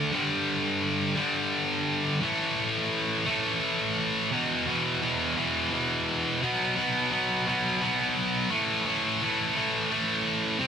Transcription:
Already playing: D3 A3
0.12 G2 D3 G3
1.15 G2 D3 G3
2.21 A2 E3 A3
3.26 A2 E3 A3
4.32 E2 B2 E3
4.67 E2 B2 E3
5.02 E2 B2 E3
5.37 E2 B2 E3
5.72 E2 B2 E3
6.42 B2 F#3 B3
6.76 B2 F#3 B3
7.11 B2 F#3 B3
7.47 B2 F#3 B3
7.82 B2 F#3 B3
8.50 A2 E3 A3
8.86 A2 E3 A3
9.22 A2 E3 A3
9.56 A2 E3 A3
9.90 A2 E3 A3
10.59 C3 G3 C4

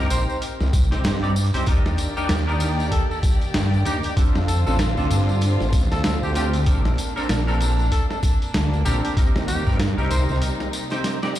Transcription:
Already playing: A#4
0.00 C4 D#4 G4
0.10 A#1 C5, closed hi-hat, tambourine
0.28 C5, tambourine
0.42 closed hi-hat, tambourine
0.61 C2, snare, tambourine
0.73 C2, kick, closed hi-hat, tambourine
0.91 C4 D#4 G4 C5, snare, closed hi-hat, tambourine
1.04 G2, snare, closed hi-hat, tambourine
1.23 C4 D#4 G4 D5, tambourine
1.36 closed hi-hat, tambourine
1.46 closed hi-hat
1.54 C2 C4 D#4 G4 C5, closed hi-hat, tambourine
1.57 closed hi-hat
1.66 D#2 D#3 A#3 D4 D#4 G4 A#4 D5, kick, closed hi-hat, tambourine
1.85 snare, tambourine
1.98 closed hi-hat, tambourine
2.17 D4 D#4 G4 A#4, tambourine
2.29 D#2, snare, closed hi-hat, tambourine
2.47 D4 D#4 G4 A#4, tambourine
2.60 closed hi-hat, tambourine
2.80 tambourine
2.91 A4, kick, closed hi-hat, tambourine
3.10 A4, tambourine
3.23 kick, closed hi-hat, tambourine
3.41 closed hi-hat, tambourine
3.54 G2, snare, closed hi-hat, tambourine
3.74 tambourine
3.85 D#2 D4 D#4 G4 A#4, closed hi-hat, tambourine
4.03 G4, closed hi-hat, tambourine
4.16 D3 C4 D4 F4 A4, kick, closed hi-hat, tambourine
4.35 F2, snare, tambourine
4.47 A4, closed hi-hat, tambourine
4.66 A1 C4 D4 F4 A4, tambourine
4.79 snare, closed hi-hat, tambourine
4.97 D2 C4 D4 F4 A4, tambourine
5.11 G2, closed hi-hat, tambourine
5.29 tambourine
5.41 closed hi-hat, tambourine
5.61 A1, snare, tambourine
5.73 kick, closed hi-hat, tambourine
5.91 D2 A4, snare, closed hi-hat, tambourine
6.04 A4, snare, closed hi-hat, tambourine
6.23 D2 G4, tambourine
6.35 C4 D4 F4 G4, closed hi-hat, tambourine
6.53 closed hi-hat, tambourine
6.66 A#1 A#3 C4 D4 A4 A#4, kick, closed hi-hat, tambourine
6.85 snare, tambourine
6.98 closed hi-hat, tambourine
7.16 C4 D4 A4 A#4, tambourine
7.29 A#1, snare, closed hi-hat, tambourine
7.47 C4 D4 A4 A#4, tambourine
7.61 closed hi-hat, tambourine
7.79 tambourine
7.92 A4, kick, closed hi-hat, tambourine
8.10 A4, snare, tambourine
8.23 kick, closed hi-hat, tambourine
8.42 closed hi-hat, tambourine
8.54 D2, snare, closed hi-hat, tambourine
8.73 tambourine
8.85 A#1 C4 D4 G4 A4 A#4, closed hi-hat, tambourine
9.04 G4, closed hi-hat, tambourine
9.16 C3 G3 C4 D#4 G4 A#4, kick, closed hi-hat, tambourine
9.36 D#2, snare, tambourine
9.48 G4, closed hi-hat, tambourine
9.67 G2 C4 D#4 G4 A#4, kick, tambourine
9.79 snare, closed hi-hat, tambourine
9.98 C2 C4 D#4 G4 A#4, tambourine
10.10 C2 C5, closed hi-hat, tambourine
10.29 C2 C5, tambourine
10.42 closed hi-hat, tambourine
10.60 snare, tambourine
10.73 closed hi-hat, tambourine
10.90 C4 D#4 G4 C5, snare, closed hi-hat, tambourine
11.04 snare, closed hi-hat, tambourine
11.22 C4 D#4 G4 D5, snare, tambourine
11.35 closed hi-hat, tambourine

